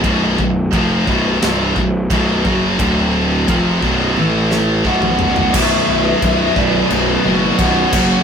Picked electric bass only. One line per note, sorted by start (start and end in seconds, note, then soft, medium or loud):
0.04 0.36 B0 loud
0.39 0.71 B0 medium
0.72 1.05 F1 medium
1.07 1.40 B0 medium
1.42 1.74 C1 medium
1.76 2.09 B0 medium
2.10 2.43 B0 medium
2.45 2.77 F#1 medium
2.79 3.45 D1 loud
3.48 3.81 F1 medium
3.83 4.15 B0 medium
4.17 4.82 A1 medium
4.84 5.50 B0 medium
5.54 5.78 B0 loud
5.88 6.13 B0 medium
6.22 6.47 B0 medium
6.56 6.81 B0 medium
6.91 7.15 B0 medium
7.25 7.50 F#1 loud
7.59 7.83 B0 loud
7.93 8.17 F#1 medium